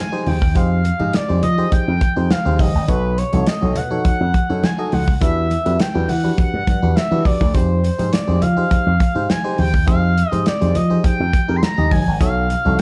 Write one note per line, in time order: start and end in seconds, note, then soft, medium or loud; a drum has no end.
0.00 0.29 G#5 loud
0.12 0.38 D#4 medium
0.12 0.38 G4 medium
0.12 0.38 G#4 medium
0.12 0.39 C5 medium
0.26 0.56 D#2 loud
0.26 0.58 G5 loud
0.26 open hi-hat medium
0.26 high conga medium
0.26 low conga medium
0.42 kick loud
0.55 0.90 F2 medium
0.55 0.81 D#4 medium
0.55 0.82 G4 medium
0.55 0.82 G#4 medium
0.55 0.82 C5 medium
0.55 1.16 F5 loud
0.55 kick loud
0.55 closed hi-hat medium
0.55 muted conga soft
0.55 low conga medium
0.84 closed hi-hat medium
0.84 muted conga soft
0.99 1.11 G#2 loud
0.99 1.16 D#4 medium
0.99 1.17 G4 medium
0.99 1.17 G#4 medium
0.99 1.17 D#5 medium
0.99 high conga medium
1.14 1.43 D5 loud
1.14 snare loud
1.14 closed hi-hat medium
1.14 muted conga soft
1.29 1.40 F2 medium
1.29 1.45 D#4 medium
1.29 1.46 G4 medium
1.29 1.46 G#4 medium
1.29 1.46 C5 medium
1.42 1.65 F3 loud
1.42 1.70 D#5 loud
1.42 closed hi-hat medium
1.42 low conga loud
1.58 1.92 D#4 medium
1.58 1.92 G4 medium
1.58 1.93 G#4 medium
1.58 1.93 C5 medium
1.58 high conga medium
1.72 2.32 G5 loud
1.72 kick loud
1.72 closed hi-hat medium
1.72 muted conga soft
1.72 high conga medium
1.88 1.98 F2 medium
2.01 kick loud
2.01 closed hi-hat medium
2.01 muted conga soft
2.01 high conga medium
2.16 2.27 F2 medium
2.16 2.33 D#4 medium
2.16 2.33 G4 medium
2.16 2.33 G#4 medium
2.16 2.33 C5 medium
2.30 2.62 F5 loud
2.30 snare loud
2.30 closed hi-hat medium
2.30 muted conga soft
2.30 high conga medium
2.45 2.56 D#2 medium
2.45 2.71 D#4 medium
2.45 2.71 G4 medium
2.45 2.71 G#4 medium
2.45 2.72 C5 medium
2.59 2.71 G1 loud
2.59 2.88 D#5 medium
2.59 kick loud
2.59 open hi-hat medium
2.59 muted conga soft
2.59 high conga medium
2.59 low conga medium
2.75 2.85 G#1 medium
2.88 3.22 B1 loud
2.88 3.14 D#4 medium
2.88 3.15 F#4 medium
2.88 3.15 A4 medium
2.88 3.19 B4 medium
2.88 3.15 C#5 medium
2.88 kick loud
2.88 closed hi-hat loud
2.88 muted conga soft
2.88 low conga medium
3.18 3.49 C#5 medium
3.18 closed hi-hat medium
3.33 3.44 C2 loud
3.33 3.49 D#4 medium
3.33 3.50 F#4 medium
3.33 3.50 A4 medium
3.33 3.50 C#5 medium
3.33 closed hi-hat medium
3.33 high conga medium
3.47 3.78 D#5 loud
3.47 snare loud
3.47 closed hi-hat medium
3.47 muted conga soft
3.61 3.73 B1 medium
3.61 3.78 D#4 medium
3.61 3.79 F#4 medium
3.61 3.79 A4 medium
3.61 3.79 C#5 medium
3.75 3.98 B2 loud
3.75 4.65 F#5 loud
3.75 closed hi-hat medium
3.75 muted conga soft
3.75 low conga loud
3.90 4.25 D#4 medium
3.90 4.25 F#4 medium
3.90 4.25 A4 medium
3.90 4.26 C#5 medium
3.90 high conga medium
4.04 kick loud
4.04 closed hi-hat medium
4.04 muted conga soft
4.04 high conga medium
4.21 4.31 F2 loud
4.34 kick loud
4.34 closed hi-hat medium
4.34 muted conga soft
4.34 high conga medium
4.49 4.60 F#2 medium
4.49 4.66 D#4 medium
4.49 4.66 F#4 medium
4.49 4.66 A4 medium
4.49 4.66 C#5 medium
4.63 4.94 G#5 loud
4.63 snare loud
4.63 closed hi-hat medium
4.63 muted conga soft
4.63 high conga medium
4.78 5.04 D#4 medium
4.78 5.04 F#4 medium
4.78 5.04 A4 medium
4.78 5.05 D#5 loud
4.92 5.15 C#2 medium
4.92 5.21 F#5 loud
4.92 open hi-hat medium
4.92 muted conga soft
4.92 high conga medium
4.92 low conga medium
5.08 kick medium
5.21 5.56 E2 loud
5.21 5.47 D4 medium
5.21 5.48 F#4 medium
5.21 5.48 G4 medium
5.21 5.48 B4 medium
5.21 5.81 E5 loud
5.21 kick loud
5.21 closed hi-hat loud
5.21 muted conga soft
5.21 low conga medium
5.50 closed hi-hat medium
5.50 muted conga soft
5.65 5.76 F2 loud
5.65 5.82 D4 medium
5.65 5.83 F#4 medium
5.65 5.83 G4 medium
5.65 5.83 B4 medium
5.65 closed hi-hat medium
5.65 high conga medium
5.80 6.10 G5 loud
5.80 snare loud
5.80 closed hi-hat loud
5.80 muted conga soft
5.94 6.06 E2 medium
5.94 6.11 D4 medium
5.94 6.12 F#4 medium
5.94 6.12 G4 medium
5.94 6.12 B4 medium
6.09 6.31 E3 loud
6.09 6.37 F#5 loud
6.09 open hi-hat medium
6.09 low conga medium
6.24 6.58 D4 medium
6.24 6.58 F#4 medium
6.24 6.59 G4 medium
6.24 6.59 B4 medium
6.24 high conga medium
6.38 6.97 F#5 loud
6.38 kick loud
6.38 closed hi-hat medium
6.38 muted conga soft
6.38 high conga medium
6.54 6.64 G2 medium
6.67 6.79 G2 medium
6.67 kick loud
6.67 closed hi-hat medium
6.67 muted conga soft
6.67 high conga medium
6.82 6.93 E2 medium
6.82 6.99 D4 medium
6.82 6.99 F#4 medium
6.82 6.99 G4 medium
6.82 6.99 B4 medium
6.96 7.27 E5 loud
6.96 snare loud
6.96 closed hi-hat medium
6.96 muted conga soft
6.96 high conga medium
7.11 7.22 E3 loud
7.11 7.37 D4 medium
7.11 7.37 F#4 medium
7.11 7.37 G4 medium
7.11 7.38 B4 medium
7.25 7.55 D5 loud
7.25 kick loud
7.25 open hi-hat medium
7.25 muted conga soft
7.25 high conga medium
7.25 low conga medium
7.41 7.51 D2 medium
7.41 kick loud
7.54 7.89 F2 loud
7.54 7.80 D#4 medium
7.54 7.80 G4 medium
7.54 7.81 G#4 medium
7.54 8.14 C5 medium
7.54 7.81 C5 medium
7.54 kick loud
7.54 closed hi-hat medium
7.54 low conga medium
7.84 closed hi-hat medium
7.84 muted conga soft
7.98 8.10 G#2 medium
7.98 8.15 D#4 medium
7.98 8.15 G4 medium
7.98 8.16 G#4 medium
7.98 8.16 C5 medium
7.98 closed hi-hat medium
7.98 high conga medium
8.12 8.43 D5 loud
8.12 snare loud
8.12 closed hi-hat medium
8.12 muted conga soft
8.27 8.39 F2 medium
8.27 8.44 D#4 medium
8.27 8.44 G4 medium
8.27 8.45 G#4 medium
8.27 8.45 C5 medium
8.41 8.64 F3 loud
8.41 9.31 F5 loud
8.41 closed hi-hat medium
8.41 low conga loud
8.56 8.91 D#4 medium
8.56 8.91 G4 medium
8.56 8.91 G#4 medium
8.56 8.92 C5 medium
8.56 high conga medium
8.71 kick loud
8.71 closed hi-hat medium
8.71 muted conga soft
8.71 high conga medium
8.86 8.97 F2 medium
9.00 kick loud
9.00 closed hi-hat medium
9.00 muted conga soft
9.00 high conga medium
9.15 9.26 G#2 medium
9.15 9.32 D#4 medium
9.15 9.32 G4 medium
9.15 9.32 G#4 medium
9.15 9.32 C5 medium
9.29 9.58 G#5 loud
9.29 snare loud
9.29 closed hi-hat medium
9.29 muted conga soft
9.29 high conga medium
9.44 9.70 D#4 medium
9.44 9.70 G4 medium
9.44 9.70 G#4 medium
9.44 9.71 C5 loud
9.58 9.88 D#2 medium
9.58 9.86 G5 loud
9.58 open hi-hat medium
9.58 muted conga soft
9.58 high conga medium
9.58 low conga medium
9.74 kick loud
9.87 10.22 F2 medium
9.87 10.13 D#4 medium
9.87 10.14 G4 medium
9.87 10.14 G#4 medium
9.87 10.14 C5 medium
9.87 10.29 F5 loud
9.87 kick loud
9.87 closed hi-hat medium
9.87 muted conga soft
9.87 low conga medium
10.18 closed hi-hat medium
10.29 10.43 G#2 loud
10.29 10.48 D#4 medium
10.29 10.49 G4 medium
10.29 10.49 G#4 medium
10.29 10.49 C5 medium
10.29 10.47 D#5 loud
10.29 closed hi-hat medium
10.29 high conga medium
10.46 10.77 D5 loud
10.46 snare loud
10.46 closed hi-hat medium
10.46 muted conga soft
10.61 10.72 F2 medium
10.61 10.78 D#4 medium
10.61 10.78 G4 medium
10.61 10.78 G#4 medium
10.61 10.78 C5 medium
10.61 closed hi-hat medium
10.75 10.97 F3 loud
10.75 11.04 D#5 loud
10.75 closed hi-hat medium
10.75 muted conga soft
10.75 low conga medium
10.90 11.24 D#4 medium
10.90 11.25 G4 medium
10.90 11.25 G#4 medium
10.90 11.25 C5 medium
10.90 high conga medium
11.04 11.57 G5 loud
11.04 kick loud
11.04 closed hi-hat medium
11.04 muted conga soft
11.04 high conga medium
11.20 11.30 F2 medium
11.33 kick loud
11.33 closed hi-hat medium
11.33 high conga medium
11.48 11.59 F2 medium
11.48 11.65 D#4 medium
11.48 11.65 G4 medium
11.48 11.65 G#4 medium
11.48 11.65 A#4 medium
11.56 11.64 C6 medium
11.62 11.93 A#5 loud
11.62 snare loud
11.62 closed hi-hat medium
11.62 high conga medium
11.77 11.88 D#2 medium
11.77 12.03 D#4 medium
11.77 12.04 G4 medium
11.77 12.04 G#4 medium
11.77 12.04 D#5 medium
11.91 12.03 G1 medium
11.91 12.20 G#5 loud
11.91 kick loud
11.91 open hi-hat medium
11.91 muted conga soft
11.91 high conga medium
11.91 low conga medium
12.07 12.17 G#1 medium
12.20 12.55 B1 medium
12.20 12.47 D#4 medium
12.20 12.47 F#4 medium
12.20 12.47 A4 medium
12.20 12.47 C#5 medium
12.20 12.80 F5 loud
12.20 kick loud
12.20 closed hi-hat loud
12.20 muted conga soft
12.20 low conga medium
12.50 closed hi-hat medium
12.50 muted conga soft
12.65 12.76 C2 loud
12.65 12.82 D#4 medium
12.65 12.82 F#4 medium
12.65 12.82 A4 medium
12.65 12.82 C#5 medium
12.65 high conga medium